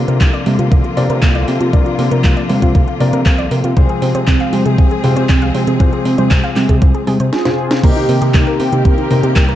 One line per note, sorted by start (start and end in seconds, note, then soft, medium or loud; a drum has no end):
0.00 0.94 C3 medium
0.00 3.73 D3 medium
0.00 3.73 F3 medium
0.00 3.73 A#3 medium
0.00 0.94 D4 medium
0.00 0.94 F4 medium
0.00 3.73 F4 medium
0.00 0.94 A#4 medium
0.00 0.94 D5 medium
0.08 0.19 C3 medium
0.08 0.20 A#4 medium
0.08 closed hi-hat soft
0.21 0.32 C2 medium
0.21 0.33 A#3 medium
0.21 kick loud
0.21 clap loud
0.21 closed hi-hat medium
0.34 0.43 D5 loud
0.34 closed hi-hat soft
0.46 0.57 C3 loud
0.46 0.58 A#3 medium
0.46 open hi-hat loud
0.46 high conga medium
0.59 0.70 C3 medium
0.59 0.68 F4 medium
0.59 closed hi-hat soft
0.72 0.83 C2 medium
0.72 0.81 A#3 medium
0.72 kick loud
0.72 closed hi-hat soft
0.84 0.93 F4 medium
0.84 closed hi-hat soft
0.97 1.15 C3 medium
0.97 1.08 C3 medium
0.97 1.06 A#3 medium
0.97 1.15 D4 medium
0.97 1.15 F4 medium
0.97 1.15 A#4 medium
0.97 1.15 D5 loud
0.97 open hi-hat loud
1.10 1.21 C3 medium
1.10 1.22 A#4 loud
1.10 closed hi-hat soft
1.22 1.44 C2 loud
1.22 1.35 A#3 medium
1.22 kick loud
1.22 clap loud
1.22 closed hi-hat soft
1.35 1.44 D5 medium
1.35 closed hi-hat soft
1.48 1.59 C3 loud
1.48 1.60 A#3 medium
1.48 open hi-hat loud
1.61 1.72 C3 medium
1.61 1.70 F4 medium
1.61 closed hi-hat soft
1.73 1.84 C2 loud
1.73 2.97 C3 medium
1.73 1.82 A#3 medium
1.73 2.97 D4 medium
1.73 2.97 F4 medium
1.73 2.97 A#4 medium
1.73 2.97 D5 medium
1.73 kick loud
1.73 closed hi-hat soft
1.86 1.95 F4 medium
1.86 closed hi-hat soft
1.99 2.10 C3 medium
1.99 2.08 A#3 medium
1.99 open hi-hat loud
2.11 2.22 C3 medium
2.11 2.23 A#4 medium
2.11 closed hi-hat soft
2.24 2.35 C2 medium
2.24 2.36 A#3 medium
2.24 kick loud
2.24 clap loud
2.24 closed hi-hat soft
2.37 2.46 D5 loud
2.37 closed hi-hat soft
2.49 2.61 C3 loud
2.49 2.62 A#3 medium
2.49 open hi-hat loud
2.49 high conga medium
2.62 2.73 C3 medium
2.62 2.71 F4 medium
2.62 kick medium
2.62 closed hi-hat medium
2.75 2.86 C2 medium
2.75 2.84 A#3 medium
2.75 kick loud
2.75 closed hi-hat soft
2.88 2.97 F4 medium
2.88 closed hi-hat soft
3.00 3.11 C3 medium
3.00 3.18 C3 medium
3.00 3.10 A#3 medium
3.00 3.18 D4 medium
3.00 3.18 F4 medium
3.00 3.18 A#4 medium
3.00 3.18 D5 loud
3.00 open hi-hat loud
3.13 3.24 C3 medium
3.13 3.25 A#4 loud
3.13 closed hi-hat medium
3.26 3.48 C2 loud
3.26 3.38 A#3 medium
3.26 kick loud
3.26 clap loud
3.26 closed hi-hat medium
3.38 3.48 D5 loud
3.38 closed hi-hat soft
3.51 3.62 C3 loud
3.51 3.63 A#3 medium
3.51 open hi-hat loud
3.64 3.75 C3 medium
3.64 3.73 F4 medium
3.64 closed hi-hat soft
3.77 3.88 C2 loud
3.77 5.01 C3 medium
3.77 7.29 F3 medium
3.77 7.29 G#3 medium
3.77 3.86 C4 medium
3.77 5.01 C4 medium
3.77 7.29 C4 medium
3.77 5.01 F4 medium
3.77 5.01 G#4 medium
3.77 7.29 G#4 medium
3.77 5.01 C5 medium
3.77 kick loud
3.77 closed hi-hat medium
3.89 3.99 G#4 medium
3.89 closed hi-hat soft
4.02 4.13 C3 medium
4.02 4.11 C4 medium
4.02 open hi-hat loud
4.15 4.26 C3 medium
4.15 4.27 C5 medium
4.15 closed hi-hat medium
4.27 4.39 C2 medium
4.27 4.40 C4 medium
4.27 kick loud
4.27 clap loud
4.27 closed hi-hat medium
4.40 4.49 F5 loud
4.40 closed hi-hat soft
4.53 4.64 C3 loud
4.53 4.65 C4 medium
4.53 open hi-hat loud
4.53 high conga medium
4.66 4.77 C3 medium
4.66 4.75 G#4 medium
4.66 closed hi-hat medium
4.78 4.89 C2 medium
4.78 4.87 C4 medium
4.78 kick loud
4.78 closed hi-hat soft
4.91 5.00 G#4 medium
4.91 closed hi-hat soft
5.04 5.15 C3 medium
5.04 5.22 C3 medium
5.04 5.13 C4 medium
5.04 5.22 C4 medium
5.04 5.22 F4 medium
5.04 5.22 G#4 medium
5.04 5.22 C5 loud
5.04 open hi-hat loud
5.16 5.28 C3 medium
5.16 5.29 C5 loud
5.16 closed hi-hat medium
5.29 5.51 C2 loud
5.29 5.41 C4 medium
5.29 kick loud
5.29 clap loud
5.29 closed hi-hat medium
5.42 5.51 F5 loud
5.42 closed hi-hat soft
5.55 5.66 C3 loud
5.55 5.67 C4 medium
5.55 open hi-hat loud
5.67 5.78 C3 medium
5.67 5.76 G#4 medium
5.67 closed hi-hat medium
5.80 5.91 C2 loud
5.80 7.04 C3 medium
5.80 5.89 C4 medium
5.80 7.04 C4 medium
5.80 7.04 F4 medium
5.80 7.04 G#4 medium
5.80 7.04 C5 medium
5.80 kick loud
5.80 closed hi-hat medium
5.93 6.02 G#4 medium
5.93 closed hi-hat soft
6.05 6.17 C3 medium
6.05 6.15 C4 medium
6.05 open hi-hat loud
6.18 6.29 C3 medium
6.18 6.30 C5 medium
6.18 closed hi-hat medium
6.18 high conga medium
6.31 6.42 C2 medium
6.31 6.43 C4 medium
6.31 kick loud
6.31 clap loud
6.31 closed hi-hat medium
6.44 6.53 F5 loud
6.44 closed hi-hat soft
6.56 6.67 C3 loud
6.56 6.68 C4 medium
6.56 clap medium
6.56 open hi-hat loud
6.56 high conga medium
6.69 6.80 C3 medium
6.69 6.78 G#4 medium
6.69 kick medium
6.69 closed hi-hat medium
6.82 6.93 C2 medium
6.82 6.91 C4 medium
6.82 kick loud
6.82 closed hi-hat medium
6.94 7.04 G#4 medium
6.94 closed hi-hat soft
7.07 7.18 C3 medium
7.07 7.16 G#4 loud
7.07 open hi-hat loud
7.07 high conga medium
7.20 7.31 C3 medium
7.20 7.29 C5 medium
7.20 closed hi-hat medium
7.33 7.80 F4 medium
7.33 7.85 G#4 loud
7.33 snare medium
7.45 7.80 C3 medium
7.45 7.80 C4 medium
7.45 7.80 F4 medium
7.45 7.80 G#4 medium
7.45 7.80 C5 medium
7.45 snare medium
7.71 snare medium
7.83 7.94 C2 loud
7.83 9.08 C3 medium
7.83 9.55 D#3 medium
7.83 9.55 A#3 medium
7.83 7.93 A#3 medium
7.83 9.08 C4 medium
7.83 9.55 C4 medium
7.83 9.08 D#4 medium
7.83 8.31 D#4 medium
7.83 9.55 G4 medium
7.83 9.08 G4 medium
7.83 8.33 G4 loud
7.83 9.08 A#4 medium
7.83 kick loud
7.83 closed hi-hat medium
7.83 crash loud
7.96 8.05 D#4 medium
7.96 closed hi-hat soft
8.09 8.20 C3 medium
8.09 8.18 A#3 medium
8.09 open hi-hat loud
8.22 8.33 C3 medium
8.22 8.34 G4 loud
8.22 closed hi-hat medium
8.34 8.45 C2 medium
8.34 8.46 A#3 medium
8.34 8.82 D#4 medium
8.34 8.85 G4 loud
8.34 kick loud
8.34 clap loud
8.34 closed hi-hat medium
8.47 8.56 A#4 loud
8.47 closed hi-hat soft
8.60 8.71 C3 loud
8.60 8.72 A#3 medium
8.60 open hi-hat loud
8.72 8.83 C3 medium
8.72 8.82 D#4 medium
8.72 closed hi-hat medium
8.85 8.96 C2 medium
8.85 8.94 A#3 medium
8.85 9.55 G4 medium
8.85 9.55 A#4 loud
8.85 kick loud
8.85 closed hi-hat medium
8.98 9.07 D#4 medium
8.98 closed hi-hat soft
9.11 9.28 C3 loud
9.11 9.22 C3 medium
9.11 9.20 A#3 medium
9.11 9.28 C4 medium
9.11 9.28 D#4 medium
9.11 9.28 G4 medium
9.11 9.28 A#4 loud
9.11 open hi-hat loud
9.23 9.34 C3 medium
9.23 9.35 G4 loud
9.23 closed hi-hat medium
9.36 9.55 C2 loud
9.36 9.48 A#3 medium
9.36 kick loud
9.36 clap loud
9.36 closed hi-hat medium
9.49 9.55 A#4 loud
9.49 closed hi-hat soft